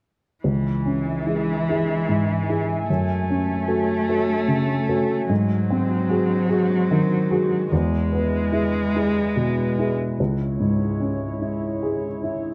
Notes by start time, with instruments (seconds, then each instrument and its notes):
0.42 upright piano C#2, cello E3, ambient pad G#3 E5 G#5
0.86 upright piano C#4
1.26 upright piano E4 G#4
1.69 upright piano E4 G#4
2.09 upright piano G#2
2.49 upright piano E4 G#4
2.87 upright piano F#2, ambient pad A3 C#5, cello A3
3.30 upright piano C#4
3.68 upright piano F#4 A4
4.09 upright piano F#4 A4
4.48 upright piano C#3
4.89 upright piano F#4 A4
5.27 upright piano G#2, cello F#3, ambient pad G#3 F#4 C5
5.70 upright piano C4
6.09 upright piano F#4 G#4
6.49 upright piano F#4 G#4
6.91 upright piano D#3
7.31 upright piano F#4 G#4
7.71 upright piano E2, cello G#3, ambient pad E4 B4
8.13 upright piano B3
8.52 upright piano E4 G#4
8.95 upright piano E4 G#4
9.36 upright piano B2
9.79 upright piano E4 G#4
10.17 upright piano C#2, ambient pad G#3 E4 C#5
10.60 upright piano G#2
11.00 upright piano C#4
11.41 upright piano E4
11.83 upright piano G#4
12.23 upright piano E4